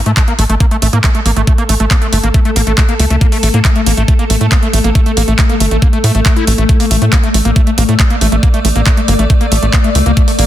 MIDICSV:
0, 0, Header, 1, 6, 480
1, 0, Start_track
1, 0, Tempo, 434783
1, 1627, Time_signature, 4, 2, 24, 8
1, 11556, End_track
2, 0, Start_track
2, 0, Title_t, "Synth drone"
2, 0, Program_c, 0, 95
2, 0, Note_on_c, 0, 57, 85
2, 0, Note_on_c, 0, 69, 82
2, 7387, Note_on_c, 0, 74, 83
2, 7411, Note_off_c, 0, 69, 0
2, 11556, Note_off_c, 0, 57, 0
2, 11556, Note_off_c, 0, 74, 0
2, 11556, End_track
3, 0, Start_track
3, 0, Title_t, "Acid bass"
3, 0, Program_c, 1, 38
3, 67, Note_on_c, 1, 57, 78
3, 125, Note_off_c, 1, 57, 0
3, 187, Note_on_c, 1, 57, 86
3, 245, Note_off_c, 1, 57, 0
3, 307, Note_on_c, 1, 58, 81
3, 365, Note_off_c, 1, 58, 0
3, 427, Note_on_c, 1, 57, 76
3, 485, Note_off_c, 1, 57, 0
3, 547, Note_on_c, 1, 57, 76
3, 605, Note_off_c, 1, 57, 0
3, 667, Note_on_c, 1, 58, 82
3, 725, Note_off_c, 1, 58, 0
3, 787, Note_on_c, 1, 57, 74
3, 845, Note_off_c, 1, 57, 0
3, 907, Note_on_c, 1, 57, 77
3, 965, Note_off_c, 1, 57, 0
3, 1027, Note_on_c, 1, 58, 79
3, 1085, Note_off_c, 1, 58, 0
3, 1147, Note_on_c, 1, 57, 85
3, 1205, Note_off_c, 1, 57, 0
3, 1267, Note_on_c, 1, 57, 73
3, 1325, Note_off_c, 1, 57, 0
3, 1387, Note_on_c, 1, 58, 80
3, 1445, Note_off_c, 1, 58, 0
3, 1507, Note_on_c, 1, 57, 72
3, 1565, Note_off_c, 1, 57, 0
3, 1627, Note_on_c, 1, 57, 82
3, 1685, Note_off_c, 1, 57, 0
3, 1747, Note_on_c, 1, 58, 78
3, 1805, Note_off_c, 1, 58, 0
3, 1867, Note_on_c, 1, 57, 74
3, 1925, Note_off_c, 1, 57, 0
3, 1987, Note_on_c, 1, 57, 75
3, 2045, Note_off_c, 1, 57, 0
3, 2107, Note_on_c, 1, 58, 84
3, 2165, Note_off_c, 1, 58, 0
3, 2227, Note_on_c, 1, 57, 82
3, 2285, Note_off_c, 1, 57, 0
3, 2347, Note_on_c, 1, 57, 77
3, 2405, Note_off_c, 1, 57, 0
3, 2467, Note_on_c, 1, 58, 79
3, 2525, Note_off_c, 1, 58, 0
3, 2587, Note_on_c, 1, 57, 83
3, 2645, Note_off_c, 1, 57, 0
3, 2707, Note_on_c, 1, 57, 75
3, 2765, Note_off_c, 1, 57, 0
3, 2827, Note_on_c, 1, 58, 77
3, 2885, Note_off_c, 1, 58, 0
3, 2947, Note_on_c, 1, 57, 78
3, 3005, Note_off_c, 1, 57, 0
3, 3067, Note_on_c, 1, 57, 83
3, 3125, Note_off_c, 1, 57, 0
3, 3187, Note_on_c, 1, 58, 72
3, 3245, Note_off_c, 1, 58, 0
3, 3307, Note_on_c, 1, 57, 80
3, 3365, Note_off_c, 1, 57, 0
3, 3427, Note_on_c, 1, 57, 75
3, 3485, Note_off_c, 1, 57, 0
3, 3547, Note_on_c, 1, 58, 83
3, 3605, Note_off_c, 1, 58, 0
3, 3667, Note_on_c, 1, 57, 78
3, 3725, Note_off_c, 1, 57, 0
3, 3787, Note_on_c, 1, 57, 76
3, 3845, Note_off_c, 1, 57, 0
3, 3907, Note_on_c, 1, 58, 79
3, 3965, Note_off_c, 1, 58, 0
3, 4027, Note_on_c, 1, 57, 83
3, 4085, Note_off_c, 1, 57, 0
3, 4147, Note_on_c, 1, 57, 77
3, 4205, Note_off_c, 1, 57, 0
3, 4267, Note_on_c, 1, 58, 78
3, 4325, Note_off_c, 1, 58, 0
3, 4387, Note_on_c, 1, 57, 78
3, 4445, Note_off_c, 1, 57, 0
3, 4507, Note_on_c, 1, 57, 84
3, 4565, Note_off_c, 1, 57, 0
3, 4627, Note_on_c, 1, 58, 75
3, 4685, Note_off_c, 1, 58, 0
3, 4747, Note_on_c, 1, 57, 79
3, 4805, Note_off_c, 1, 57, 0
3, 4867, Note_on_c, 1, 57, 77
3, 4925, Note_off_c, 1, 57, 0
3, 4987, Note_on_c, 1, 58, 80
3, 5045, Note_off_c, 1, 58, 0
3, 5107, Note_on_c, 1, 57, 78
3, 5165, Note_off_c, 1, 57, 0
3, 5227, Note_on_c, 1, 57, 79
3, 5285, Note_off_c, 1, 57, 0
3, 5347, Note_on_c, 1, 58, 75
3, 5405, Note_off_c, 1, 58, 0
3, 5467, Note_on_c, 1, 57, 85
3, 5525, Note_off_c, 1, 57, 0
3, 5587, Note_on_c, 1, 57, 79
3, 5645, Note_off_c, 1, 57, 0
3, 5707, Note_on_c, 1, 58, 80
3, 5765, Note_off_c, 1, 58, 0
3, 5828, Note_on_c, 1, 57, 80
3, 5885, Note_off_c, 1, 57, 0
3, 5947, Note_on_c, 1, 57, 84
3, 6005, Note_off_c, 1, 57, 0
3, 6067, Note_on_c, 1, 58, 82
3, 6125, Note_off_c, 1, 58, 0
3, 6187, Note_on_c, 1, 57, 80
3, 6245, Note_off_c, 1, 57, 0
3, 6307, Note_on_c, 1, 57, 74
3, 6365, Note_off_c, 1, 57, 0
3, 6427, Note_on_c, 1, 58, 84
3, 6485, Note_off_c, 1, 58, 0
3, 6547, Note_on_c, 1, 57, 72
3, 6605, Note_off_c, 1, 57, 0
3, 6667, Note_on_c, 1, 57, 79
3, 6754, Note_off_c, 1, 57, 0
3, 6787, Note_on_c, 1, 57, 78
3, 6845, Note_off_c, 1, 57, 0
3, 6907, Note_on_c, 1, 57, 82
3, 6994, Note_off_c, 1, 57, 0
3, 7027, Note_on_c, 1, 64, 99
3, 7114, Note_off_c, 1, 64, 0
3, 7147, Note_on_c, 1, 57, 78
3, 7205, Note_off_c, 1, 57, 0
3, 7267, Note_on_c, 1, 57, 97
3, 7325, Note_off_c, 1, 57, 0
3, 7386, Note_on_c, 1, 57, 81
3, 7421, Note_off_c, 1, 57, 0
3, 7507, Note_on_c, 1, 58, 77
3, 7565, Note_off_c, 1, 58, 0
3, 7627, Note_on_c, 1, 57, 78
3, 7685, Note_off_c, 1, 57, 0
3, 7747, Note_on_c, 1, 57, 77
3, 7782, Note_off_c, 1, 57, 0
3, 7867, Note_on_c, 1, 58, 84
3, 7925, Note_off_c, 1, 58, 0
3, 7987, Note_on_c, 1, 57, 77
3, 8045, Note_off_c, 1, 57, 0
3, 8107, Note_on_c, 1, 57, 80
3, 8142, Note_off_c, 1, 57, 0
3, 8227, Note_on_c, 1, 58, 77
3, 8285, Note_off_c, 1, 58, 0
3, 8347, Note_on_c, 1, 57, 80
3, 8405, Note_off_c, 1, 57, 0
3, 8467, Note_on_c, 1, 57, 74
3, 8502, Note_off_c, 1, 57, 0
3, 8587, Note_on_c, 1, 58, 78
3, 8645, Note_off_c, 1, 58, 0
3, 8707, Note_on_c, 1, 57, 79
3, 8765, Note_off_c, 1, 57, 0
3, 8826, Note_on_c, 1, 57, 80
3, 8861, Note_off_c, 1, 57, 0
3, 8946, Note_on_c, 1, 58, 77
3, 9005, Note_off_c, 1, 58, 0
3, 9066, Note_on_c, 1, 57, 82
3, 9125, Note_off_c, 1, 57, 0
3, 9187, Note_on_c, 1, 57, 74
3, 9222, Note_off_c, 1, 57, 0
3, 9307, Note_on_c, 1, 58, 86
3, 9365, Note_off_c, 1, 58, 0
3, 9427, Note_on_c, 1, 57, 79
3, 9485, Note_off_c, 1, 57, 0
3, 9547, Note_on_c, 1, 57, 77
3, 9582, Note_off_c, 1, 57, 0
3, 9667, Note_on_c, 1, 58, 77
3, 9725, Note_off_c, 1, 58, 0
3, 9787, Note_on_c, 1, 57, 86
3, 9845, Note_off_c, 1, 57, 0
3, 9907, Note_on_c, 1, 57, 80
3, 9942, Note_off_c, 1, 57, 0
3, 10027, Note_on_c, 1, 58, 78
3, 10085, Note_off_c, 1, 58, 0
3, 10147, Note_on_c, 1, 57, 79
3, 10205, Note_off_c, 1, 57, 0
3, 10267, Note_on_c, 1, 57, 85
3, 10302, Note_off_c, 1, 57, 0
3, 10387, Note_on_c, 1, 58, 74
3, 10445, Note_off_c, 1, 58, 0
3, 10507, Note_on_c, 1, 57, 76
3, 10565, Note_off_c, 1, 57, 0
3, 10627, Note_on_c, 1, 57, 76
3, 10662, Note_off_c, 1, 57, 0
3, 10747, Note_on_c, 1, 58, 86
3, 10805, Note_off_c, 1, 58, 0
3, 10867, Note_on_c, 1, 57, 72
3, 10925, Note_off_c, 1, 57, 0
3, 10987, Note_on_c, 1, 57, 81
3, 11022, Note_off_c, 1, 57, 0
3, 11107, Note_on_c, 1, 58, 72
3, 11165, Note_off_c, 1, 58, 0
3, 11227, Note_on_c, 1, 57, 86
3, 11285, Note_off_c, 1, 57, 0
3, 11347, Note_on_c, 1, 57, 78
3, 11382, Note_off_c, 1, 57, 0
3, 11467, Note_on_c, 1, 58, 75
3, 11525, Note_off_c, 1, 58, 0
3, 11556, End_track
4, 0, Start_track
4, 0, Title_t, "Analog synth bass"
4, 0, Program_c, 2, 38
4, 67, Note_on_c, 2, 45, 81
4, 148, Note_off_c, 2, 45, 0
4, 427, Note_on_c, 2, 33, 95
4, 508, Note_off_c, 2, 33, 0
4, 547, Note_on_c, 2, 33, 81
4, 628, Note_off_c, 2, 33, 0
4, 907, Note_on_c, 2, 33, 97
4, 988, Note_off_c, 2, 33, 0
4, 1027, Note_on_c, 2, 45, 78
4, 1108, Note_off_c, 2, 45, 0
4, 1387, Note_on_c, 2, 33, 94
4, 1468, Note_off_c, 2, 33, 0
4, 1507, Note_on_c, 2, 33, 83
4, 1588, Note_off_c, 2, 33, 0
4, 1867, Note_on_c, 2, 33, 93
4, 1948, Note_off_c, 2, 33, 0
4, 1987, Note_on_c, 2, 33, 80
4, 2068, Note_off_c, 2, 33, 0
4, 2347, Note_on_c, 2, 31, 99
4, 2428, Note_off_c, 2, 31, 0
4, 2467, Note_on_c, 2, 33, 85
4, 2548, Note_off_c, 2, 33, 0
4, 2827, Note_on_c, 2, 33, 102
4, 2908, Note_off_c, 2, 33, 0
4, 2946, Note_on_c, 2, 33, 83
4, 3027, Note_off_c, 2, 33, 0
4, 3307, Note_on_c, 2, 37, 97
4, 3388, Note_off_c, 2, 37, 0
4, 3427, Note_on_c, 2, 37, 84
4, 3508, Note_off_c, 2, 37, 0
4, 3787, Note_on_c, 2, 33, 91
4, 3868, Note_off_c, 2, 33, 0
4, 3907, Note_on_c, 2, 45, 83
4, 3988, Note_off_c, 2, 45, 0
4, 4267, Note_on_c, 2, 33, 97
4, 4348, Note_off_c, 2, 33, 0
4, 4387, Note_on_c, 2, 33, 83
4, 4468, Note_off_c, 2, 33, 0
4, 4747, Note_on_c, 2, 33, 98
4, 4828, Note_off_c, 2, 33, 0
4, 4868, Note_on_c, 2, 45, 81
4, 4948, Note_off_c, 2, 45, 0
4, 5227, Note_on_c, 2, 33, 95
4, 5308, Note_off_c, 2, 33, 0
4, 5347, Note_on_c, 2, 33, 84
4, 5428, Note_off_c, 2, 33, 0
4, 5707, Note_on_c, 2, 33, 91
4, 5788, Note_off_c, 2, 33, 0
4, 5827, Note_on_c, 2, 33, 83
4, 5908, Note_off_c, 2, 33, 0
4, 6187, Note_on_c, 2, 31, 98
4, 6268, Note_off_c, 2, 31, 0
4, 6307, Note_on_c, 2, 33, 84
4, 6388, Note_off_c, 2, 33, 0
4, 6667, Note_on_c, 2, 45, 101
4, 6748, Note_off_c, 2, 45, 0
4, 6787, Note_on_c, 2, 33, 82
4, 6868, Note_off_c, 2, 33, 0
4, 7147, Note_on_c, 2, 33, 95
4, 7228, Note_off_c, 2, 33, 0
4, 7267, Note_on_c, 2, 33, 86
4, 7348, Note_off_c, 2, 33, 0
4, 7627, Note_on_c, 2, 33, 92
4, 7708, Note_off_c, 2, 33, 0
4, 7747, Note_on_c, 2, 45, 80
4, 7828, Note_off_c, 2, 45, 0
4, 8107, Note_on_c, 2, 33, 93
4, 8188, Note_off_c, 2, 33, 0
4, 8227, Note_on_c, 2, 33, 81
4, 8308, Note_off_c, 2, 33, 0
4, 8587, Note_on_c, 2, 33, 102
4, 8668, Note_off_c, 2, 33, 0
4, 8707, Note_on_c, 2, 45, 82
4, 8788, Note_off_c, 2, 45, 0
4, 9067, Note_on_c, 2, 33, 93
4, 9148, Note_off_c, 2, 33, 0
4, 9187, Note_on_c, 2, 33, 83
4, 9268, Note_off_c, 2, 33, 0
4, 9547, Note_on_c, 2, 33, 95
4, 9628, Note_off_c, 2, 33, 0
4, 9667, Note_on_c, 2, 33, 83
4, 9748, Note_off_c, 2, 33, 0
4, 10027, Note_on_c, 2, 31, 99
4, 10108, Note_off_c, 2, 31, 0
4, 10147, Note_on_c, 2, 33, 82
4, 10228, Note_off_c, 2, 33, 0
4, 10507, Note_on_c, 2, 33, 96
4, 10588, Note_off_c, 2, 33, 0
4, 10627, Note_on_c, 2, 33, 83
4, 10708, Note_off_c, 2, 33, 0
4, 10987, Note_on_c, 2, 37, 91
4, 11068, Note_off_c, 2, 37, 0
4, 11107, Note_on_c, 2, 37, 81
4, 11188, Note_off_c, 2, 37, 0
4, 11467, Note_on_c, 2, 33, 95
4, 11548, Note_off_c, 2, 33, 0
4, 11556, End_track
5, 0, Start_track
5, 0, Title_t, "Riser"
5, 0, Program_c, 3, 103
5, 11227, Note_on_c, 3, 60, 77
5, 11556, Note_off_c, 3, 60, 0
5, 11556, End_track
6, 0, Start_track
6, 0, Title_t, "Drums"
6, 67, Note_on_c, 9, 42, 54
6, 177, Note_off_c, 9, 42, 0
6, 187, Note_on_c, 9, 36, 114
6, 187, Note_on_c, 9, 39, 119
6, 187, Note_on_c, 9, 42, 80
6, 297, Note_off_c, 9, 36, 0
6, 297, Note_off_c, 9, 39, 0
6, 297, Note_off_c, 9, 42, 0
6, 307, Note_on_c, 9, 42, 54
6, 417, Note_off_c, 9, 42, 0
6, 427, Note_on_c, 9, 46, 104
6, 537, Note_off_c, 9, 46, 0
6, 547, Note_on_c, 9, 42, 55
6, 657, Note_off_c, 9, 42, 0
6, 667, Note_on_c, 9, 36, 119
6, 667, Note_on_c, 9, 42, 83
6, 777, Note_off_c, 9, 36, 0
6, 777, Note_off_c, 9, 42, 0
6, 787, Note_on_c, 9, 42, 55
6, 897, Note_off_c, 9, 42, 0
6, 907, Note_on_c, 9, 46, 106
6, 1017, Note_off_c, 9, 46, 0
6, 1027, Note_on_c, 9, 42, 54
6, 1137, Note_off_c, 9, 42, 0
6, 1147, Note_on_c, 9, 36, 117
6, 1147, Note_on_c, 9, 39, 127
6, 1147, Note_on_c, 9, 42, 83
6, 1257, Note_off_c, 9, 36, 0
6, 1257, Note_off_c, 9, 39, 0
6, 1257, Note_off_c, 9, 42, 0
6, 1267, Note_on_c, 9, 42, 58
6, 1377, Note_off_c, 9, 42, 0
6, 1387, Note_on_c, 9, 46, 104
6, 1497, Note_off_c, 9, 46, 0
6, 1507, Note_on_c, 9, 42, 53
6, 1617, Note_off_c, 9, 42, 0
6, 1627, Note_on_c, 9, 36, 118
6, 1627, Note_on_c, 9, 42, 81
6, 1737, Note_off_c, 9, 36, 0
6, 1738, Note_off_c, 9, 42, 0
6, 1747, Note_on_c, 9, 42, 54
6, 1858, Note_off_c, 9, 42, 0
6, 1867, Note_on_c, 9, 46, 110
6, 1978, Note_off_c, 9, 46, 0
6, 1987, Note_on_c, 9, 42, 52
6, 2097, Note_off_c, 9, 42, 0
6, 2107, Note_on_c, 9, 36, 127
6, 2107, Note_on_c, 9, 39, 115
6, 2107, Note_on_c, 9, 42, 78
6, 2217, Note_off_c, 9, 36, 0
6, 2217, Note_off_c, 9, 39, 0
6, 2217, Note_off_c, 9, 42, 0
6, 2227, Note_on_c, 9, 42, 51
6, 2338, Note_off_c, 9, 42, 0
6, 2347, Note_on_c, 9, 46, 112
6, 2458, Note_off_c, 9, 46, 0
6, 2467, Note_on_c, 9, 42, 54
6, 2578, Note_off_c, 9, 42, 0
6, 2587, Note_on_c, 9, 36, 124
6, 2587, Note_on_c, 9, 42, 82
6, 2697, Note_off_c, 9, 36, 0
6, 2698, Note_off_c, 9, 42, 0
6, 2707, Note_on_c, 9, 42, 51
6, 2818, Note_off_c, 9, 42, 0
6, 2827, Note_on_c, 9, 46, 112
6, 2938, Note_off_c, 9, 46, 0
6, 2947, Note_on_c, 9, 42, 51
6, 3057, Note_off_c, 9, 42, 0
6, 3067, Note_on_c, 9, 36, 120
6, 3067, Note_on_c, 9, 39, 123
6, 3067, Note_on_c, 9, 42, 77
6, 3177, Note_off_c, 9, 36, 0
6, 3177, Note_off_c, 9, 39, 0
6, 3177, Note_off_c, 9, 42, 0
6, 3187, Note_on_c, 9, 42, 56
6, 3297, Note_off_c, 9, 42, 0
6, 3307, Note_on_c, 9, 46, 104
6, 3417, Note_off_c, 9, 46, 0
6, 3427, Note_on_c, 9, 42, 52
6, 3537, Note_off_c, 9, 42, 0
6, 3547, Note_on_c, 9, 36, 121
6, 3547, Note_on_c, 9, 42, 77
6, 3657, Note_off_c, 9, 36, 0
6, 3657, Note_off_c, 9, 42, 0
6, 3667, Note_on_c, 9, 46, 66
6, 3777, Note_off_c, 9, 46, 0
6, 3787, Note_on_c, 9, 46, 107
6, 3898, Note_off_c, 9, 46, 0
6, 3907, Note_on_c, 9, 42, 51
6, 4017, Note_off_c, 9, 42, 0
6, 4027, Note_on_c, 9, 36, 127
6, 4027, Note_on_c, 9, 39, 116
6, 4027, Note_on_c, 9, 42, 76
6, 4137, Note_off_c, 9, 36, 0
6, 4137, Note_off_c, 9, 39, 0
6, 4137, Note_off_c, 9, 42, 0
6, 4147, Note_on_c, 9, 42, 50
6, 4257, Note_off_c, 9, 42, 0
6, 4267, Note_on_c, 9, 46, 112
6, 4377, Note_off_c, 9, 46, 0
6, 4387, Note_on_c, 9, 42, 53
6, 4498, Note_off_c, 9, 42, 0
6, 4507, Note_on_c, 9, 36, 127
6, 4507, Note_on_c, 9, 42, 76
6, 4617, Note_off_c, 9, 36, 0
6, 4617, Note_off_c, 9, 42, 0
6, 4627, Note_on_c, 9, 42, 49
6, 4738, Note_off_c, 9, 42, 0
6, 4747, Note_on_c, 9, 46, 110
6, 4858, Note_off_c, 9, 46, 0
6, 4867, Note_on_c, 9, 42, 52
6, 4978, Note_off_c, 9, 42, 0
6, 4987, Note_on_c, 9, 36, 127
6, 4987, Note_on_c, 9, 39, 123
6, 4987, Note_on_c, 9, 42, 77
6, 5097, Note_off_c, 9, 36, 0
6, 5098, Note_off_c, 9, 39, 0
6, 5098, Note_off_c, 9, 42, 0
6, 5108, Note_on_c, 9, 42, 52
6, 5218, Note_off_c, 9, 42, 0
6, 5227, Note_on_c, 9, 46, 110
6, 5338, Note_off_c, 9, 46, 0
6, 5347, Note_on_c, 9, 42, 50
6, 5458, Note_off_c, 9, 42, 0
6, 5467, Note_on_c, 9, 36, 117
6, 5467, Note_on_c, 9, 42, 74
6, 5577, Note_off_c, 9, 36, 0
6, 5578, Note_off_c, 9, 42, 0
6, 5587, Note_on_c, 9, 42, 49
6, 5698, Note_off_c, 9, 42, 0
6, 5707, Note_on_c, 9, 46, 110
6, 5818, Note_off_c, 9, 46, 0
6, 5827, Note_on_c, 9, 42, 51
6, 5938, Note_off_c, 9, 42, 0
6, 5947, Note_on_c, 9, 36, 125
6, 5947, Note_on_c, 9, 39, 112
6, 5947, Note_on_c, 9, 42, 73
6, 6057, Note_off_c, 9, 36, 0
6, 6057, Note_off_c, 9, 39, 0
6, 6057, Note_off_c, 9, 42, 0
6, 6067, Note_on_c, 9, 42, 51
6, 6178, Note_off_c, 9, 42, 0
6, 6187, Note_on_c, 9, 46, 110
6, 6298, Note_off_c, 9, 46, 0
6, 6307, Note_on_c, 9, 42, 50
6, 6418, Note_off_c, 9, 42, 0
6, 6427, Note_on_c, 9, 36, 127
6, 6427, Note_on_c, 9, 42, 73
6, 6537, Note_off_c, 9, 36, 0
6, 6538, Note_off_c, 9, 42, 0
6, 6547, Note_on_c, 9, 42, 50
6, 6658, Note_off_c, 9, 42, 0
6, 6667, Note_on_c, 9, 46, 114
6, 6778, Note_off_c, 9, 46, 0
6, 6787, Note_on_c, 9, 42, 50
6, 6898, Note_off_c, 9, 42, 0
6, 6907, Note_on_c, 9, 36, 121
6, 6907, Note_on_c, 9, 39, 115
6, 6907, Note_on_c, 9, 42, 75
6, 7017, Note_off_c, 9, 36, 0
6, 7017, Note_off_c, 9, 39, 0
6, 7017, Note_off_c, 9, 42, 0
6, 7027, Note_on_c, 9, 42, 52
6, 7138, Note_off_c, 9, 42, 0
6, 7147, Note_on_c, 9, 46, 111
6, 7258, Note_off_c, 9, 46, 0
6, 7267, Note_on_c, 9, 42, 50
6, 7378, Note_off_c, 9, 42, 0
6, 7387, Note_on_c, 9, 36, 116
6, 7388, Note_on_c, 9, 42, 76
6, 7497, Note_off_c, 9, 36, 0
6, 7498, Note_off_c, 9, 42, 0
6, 7507, Note_on_c, 9, 46, 58
6, 7618, Note_off_c, 9, 46, 0
6, 7627, Note_on_c, 9, 46, 105
6, 7738, Note_off_c, 9, 46, 0
6, 7747, Note_on_c, 9, 42, 48
6, 7858, Note_off_c, 9, 42, 0
6, 7867, Note_on_c, 9, 36, 119
6, 7867, Note_on_c, 9, 39, 107
6, 7867, Note_on_c, 9, 42, 75
6, 7977, Note_off_c, 9, 36, 0
6, 7978, Note_off_c, 9, 39, 0
6, 7978, Note_off_c, 9, 42, 0
6, 7988, Note_on_c, 9, 42, 52
6, 8098, Note_off_c, 9, 42, 0
6, 8108, Note_on_c, 9, 46, 111
6, 8218, Note_off_c, 9, 46, 0
6, 8227, Note_on_c, 9, 42, 52
6, 8338, Note_off_c, 9, 42, 0
6, 8347, Note_on_c, 9, 36, 118
6, 8347, Note_on_c, 9, 42, 72
6, 8457, Note_off_c, 9, 36, 0
6, 8458, Note_off_c, 9, 42, 0
6, 8467, Note_on_c, 9, 42, 51
6, 8577, Note_off_c, 9, 42, 0
6, 8587, Note_on_c, 9, 46, 108
6, 8697, Note_off_c, 9, 46, 0
6, 8707, Note_on_c, 9, 42, 53
6, 8818, Note_off_c, 9, 42, 0
6, 8827, Note_on_c, 9, 36, 119
6, 8827, Note_on_c, 9, 39, 117
6, 8827, Note_on_c, 9, 42, 77
6, 8937, Note_off_c, 9, 36, 0
6, 8938, Note_off_c, 9, 39, 0
6, 8938, Note_off_c, 9, 42, 0
6, 8947, Note_on_c, 9, 42, 53
6, 9058, Note_off_c, 9, 42, 0
6, 9067, Note_on_c, 9, 46, 103
6, 9178, Note_off_c, 9, 46, 0
6, 9187, Note_on_c, 9, 42, 49
6, 9298, Note_off_c, 9, 42, 0
6, 9307, Note_on_c, 9, 36, 114
6, 9307, Note_on_c, 9, 42, 80
6, 9417, Note_off_c, 9, 36, 0
6, 9417, Note_off_c, 9, 42, 0
6, 9427, Note_on_c, 9, 42, 53
6, 9537, Note_off_c, 9, 42, 0
6, 9547, Note_on_c, 9, 46, 100
6, 9657, Note_off_c, 9, 46, 0
6, 9667, Note_on_c, 9, 42, 50
6, 9777, Note_off_c, 9, 42, 0
6, 9786, Note_on_c, 9, 39, 108
6, 9786, Note_on_c, 9, 42, 73
6, 9787, Note_on_c, 9, 36, 114
6, 9897, Note_off_c, 9, 36, 0
6, 9897, Note_off_c, 9, 39, 0
6, 9897, Note_off_c, 9, 42, 0
6, 9907, Note_on_c, 9, 42, 54
6, 10017, Note_off_c, 9, 42, 0
6, 10026, Note_on_c, 9, 46, 106
6, 10137, Note_off_c, 9, 46, 0
6, 10147, Note_on_c, 9, 42, 53
6, 10257, Note_off_c, 9, 42, 0
6, 10267, Note_on_c, 9, 36, 116
6, 10267, Note_on_c, 9, 42, 75
6, 10377, Note_off_c, 9, 36, 0
6, 10377, Note_off_c, 9, 42, 0
6, 10387, Note_on_c, 9, 42, 52
6, 10497, Note_off_c, 9, 42, 0
6, 10507, Note_on_c, 9, 46, 108
6, 10617, Note_off_c, 9, 46, 0
6, 10627, Note_on_c, 9, 42, 52
6, 10737, Note_off_c, 9, 42, 0
6, 10746, Note_on_c, 9, 39, 114
6, 10746, Note_on_c, 9, 42, 80
6, 10747, Note_on_c, 9, 36, 115
6, 10857, Note_off_c, 9, 36, 0
6, 10857, Note_off_c, 9, 39, 0
6, 10857, Note_off_c, 9, 42, 0
6, 10867, Note_on_c, 9, 42, 55
6, 10977, Note_off_c, 9, 42, 0
6, 10987, Note_on_c, 9, 46, 104
6, 11097, Note_off_c, 9, 46, 0
6, 11107, Note_on_c, 9, 42, 50
6, 11217, Note_off_c, 9, 42, 0
6, 11227, Note_on_c, 9, 36, 114
6, 11227, Note_on_c, 9, 42, 87
6, 11337, Note_off_c, 9, 36, 0
6, 11337, Note_off_c, 9, 42, 0
6, 11347, Note_on_c, 9, 46, 60
6, 11457, Note_off_c, 9, 46, 0
6, 11467, Note_on_c, 9, 46, 105
6, 11556, Note_off_c, 9, 46, 0
6, 11556, End_track
0, 0, End_of_file